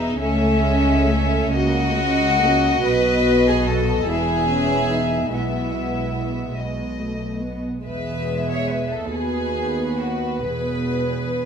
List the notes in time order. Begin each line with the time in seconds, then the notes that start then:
Already playing: E1 E2 B3 D#4 G#4 E5
0.19 C#2 C#3 A3 C#4 A4 E5
0.61 G#3
1.06 A3
1.50 C#2 C#3 A#3 F#4 D#5
1.95 G#3
2.40 A#3
2.83 B1 B2 B3 B4
3.47 G#4
3.66 A4
4.06 E1 E2 B3 E4 G#4 E5
4.49 C#4
4.90 D#4
5.31 B1 B2 G#3 B3 E4 E5
6.55 B1 B2 G#3 D#5
6.97 A3
7.41 B3
7.83 E1 E2 G#3 G#4 B4 E5
8.50 C#5
8.69 B4
8.90 A4
9.11 D#2 B3 F#4 G#4 B4
9.98 F#4
10.42 E1 E2 B3 G#4 B4